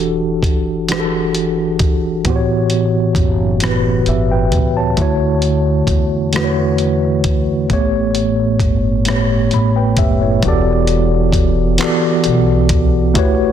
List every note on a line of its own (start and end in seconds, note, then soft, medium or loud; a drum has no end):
0.00 0.43 E1 medium
0.00 0.51 E3 medium
0.00 0.52 D4 medium
0.00 0.53 F#4 medium
0.00 0.53 G4 medium
0.00 0.54 A4 medium
0.43 2.26 F#1 medium
0.43 kick medium
0.43 closed hi-hat medium
0.88 1.88 E3 medium
0.88 1.88 D4 medium
0.88 1.89 F#4 medium
0.88 1.89 G4 medium
0.88 cross-stick medium
0.88 closed hi-hat medium
0.93 0.97 G#4 medium
1.00 1.93 A4 medium
1.35 closed hi-hat soft
1.79 kick medium
1.79 closed hi-hat medium
2.24 3.12 A1 medium
2.24 3.24 A2 medium
2.24 3.24 E3 medium
2.24 3.25 B3 medium
2.24 3.25 F#4 medium
2.24 kick medium
2.24 closed hi-hat medium
2.29 3.26 G4 medium
2.29 2.34 C5 medium
2.36 3.29 C#5 medium
2.70 closed hi-hat soft
3.15 4.03 F#1 medium
3.15 kick medium
3.15 closed hi-hat medium
3.60 4.60 A2 medium
3.60 4.61 E3 medium
3.60 4.61 B3 medium
3.60 4.08 F#4 medium
3.60 cross-stick loud
3.60 closed hi-hat medium
3.65 4.08 G4 medium
3.65 4.09 B4 medium
4.06 4.54 G1 medium
4.06 4.30 G4 soft
4.06 4.29 E5 medium
4.06 closed hi-hat soft
4.31 4.74 B4 medium
4.31 4.74 G5 medium
4.52 4.94 C#2 medium
4.52 kick medium
4.52 closed hi-hat medium
4.77 5.00 C#5 soft
4.77 5.19 A5 medium
4.97 5.85 D2 medium
4.97 5.96 D3 medium
4.97 5.97 A3 medium
4.97 5.97 E4 medium
4.97 5.98 F#4 medium
4.97 kick medium
4.97 closed hi-hat medium
5.02 5.99 C#5 medium
5.42 closed hi-hat soft
5.87 7.66 E2 medium
5.87 kick medium
5.87 closed hi-hat medium
6.33 7.33 D3 medium
6.33 7.33 A3 medium
6.33 7.34 E4 medium
6.33 cross-stick loud
6.33 closed hi-hat medium
6.37 7.35 F#4 medium
6.37 6.43 B4 medium
6.44 7.38 C#5 medium
6.78 closed hi-hat soft
7.24 kick medium
7.24 closed hi-hat medium
7.69 8.57 A1 medium
7.69 8.69 A2 medium
7.69 8.69 A3 medium
7.69 8.70 B3 medium
7.69 8.71 G4 medium
7.69 kick medium
7.69 closed hi-hat medium
7.73 8.71 C#5 medium
8.15 closed hi-hat soft
8.60 9.48 G1 medium
8.60 kick medium
8.60 closed hi-hat medium
9.05 10.05 A2 medium
9.05 10.06 A3 medium
9.05 10.06 B3 medium
9.05 9.53 G4 medium
9.05 cross-stick loud
9.05 closed hi-hat medium
9.10 9.54 C#5 medium
9.51 9.94 A1 medium
9.51 9.95 B5 medium
9.51 closed hi-hat soft
9.76 9.97 B4 soft
9.76 9.97 G5 soft
9.97 10.39 F#1 medium
9.97 10.20 G4 soft
9.97 10.40 E5 medium
9.97 kick medium
9.97 closed hi-hat medium
10.22 10.65 E4 soft
10.22 10.64 C#5 soft
10.43 11.75 E1 medium
10.43 11.42 E3 medium
10.43 11.43 B3 medium
10.43 11.43 F#4 medium
10.43 11.44 G4 medium
10.43 kick loud
10.43 closed hi-hat medium
10.47 11.44 A4 medium
10.47 11.45 D5 medium
10.87 closed hi-hat soft
11.33 kick medium
11.33 closed hi-hat medium
11.78 12.78 E3 medium
11.78 12.79 B3 medium
11.78 12.79 F#4 medium
11.78 12.80 G4 medium
11.78 clap loud
11.78 closed hi-hat medium
11.82 12.80 A4 medium
11.82 12.81 D5 medium
12.24 13.16 B1 medium
12.24 closed hi-hat soft
12.69 kick loud
12.69 closed hi-hat medium
13.14 13.52 A1 medium
13.14 13.52 A3 medium
13.14 13.52 E4 medium
13.14 13.52 F#4 medium
13.14 13.52 G4 medium
13.14 13.52 B4 medium
13.14 kick loud
13.14 closed hi-hat medium
13.19 13.52 C#5 loud